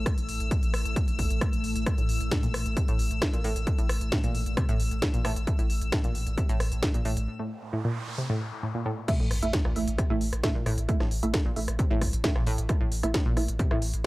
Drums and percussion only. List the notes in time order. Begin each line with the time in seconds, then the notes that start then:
0.06 kick, cross-stick, closed hi-hat
0.18 closed hi-hat
0.29 open hi-hat
0.40 closed hi-hat
0.51 kick, closed hi-hat
0.63 closed hi-hat
0.74 cross-stick, open hi-hat
0.85 closed hi-hat
0.96 kick, closed hi-hat
1.08 closed hi-hat
1.19 kick, open hi-hat
1.30 closed hi-hat
1.41 kick, cross-stick, closed hi-hat
1.53 closed hi-hat
1.64 open hi-hat
1.76 closed hi-hat
1.86 kick, cross-stick, closed hi-hat
1.98 closed hi-hat
2.09 open hi-hat
2.21 closed hi-hat
2.31 kick, snare, closed hi-hat
2.43 closed hi-hat
2.54 cross-stick, open hi-hat
2.66 closed hi-hat
2.77 kick, closed hi-hat
2.88 closed hi-hat
2.99 open hi-hat
3.11 closed hi-hat
3.22 kick, cross-stick, snare, closed hi-hat
3.33 closed hi-hat
3.44 open hi-hat
3.56 closed hi-hat
3.67 kick, closed hi-hat
3.79 closed hi-hat
3.89 cross-stick, open hi-hat
4.01 closed hi-hat
4.12 kick, snare, closed hi-hat
4.24 closed hi-hat
4.35 open hi-hat
4.46 closed hi-hat
4.57 kick, cross-stick, closed hi-hat
4.69 closed hi-hat
4.80 open hi-hat
4.91 closed hi-hat
5.02 kick, snare, closed hi-hat
5.14 closed hi-hat
5.25 cross-stick, open hi-hat
5.36 closed hi-hat
5.47 kick, closed hi-hat
5.59 closed hi-hat
5.70 open hi-hat
5.81 closed hi-hat
5.92 kick, cross-stick, snare, closed hi-hat
6.04 closed hi-hat
6.15 open hi-hat
6.27 closed hi-hat
6.38 kick, closed hi-hat
6.49 closed hi-hat
6.60 cross-stick, open hi-hat
6.72 closed hi-hat
6.83 kick, snare, closed hi-hat
6.94 closed hi-hat
7.05 open hi-hat
7.17 closed hi-hat
9.08 kick, closed hi-hat, crash
9.31 cross-stick, open hi-hat
9.42 closed hi-hat
9.53 kick, snare, closed hi-hat
9.65 cross-stick
9.76 open hi-hat
9.88 closed hi-hat
9.98 kick, cross-stick, closed hi-hat
10.21 open hi-hat
10.33 cross-stick, closed hi-hat
10.44 kick, snare, closed hi-hat
10.66 cross-stick, open hi-hat
10.78 closed hi-hat
10.89 kick, closed hi-hat
11.00 cross-stick, snare
11.11 open hi-hat
11.23 closed hi-hat
11.34 kick, cross-stick, snare, closed hi-hat
11.56 open hi-hat
11.68 cross-stick, closed hi-hat
11.79 kick, closed hi-hat
12.01 kick, cross-stick, open hi-hat
12.13 closed hi-hat
12.24 kick, snare, closed hi-hat
12.36 cross-stick
12.47 open hi-hat
12.58 closed hi-hat
12.69 kick, cross-stick, closed hi-hat
12.92 open hi-hat
13.03 cross-stick, closed hi-hat
13.14 kick, snare, closed hi-hat
13.37 cross-stick, open hi-hat
13.48 closed hi-hat
13.59 kick, closed hi-hat
13.71 cross-stick
13.82 open hi-hat
13.94 closed hi-hat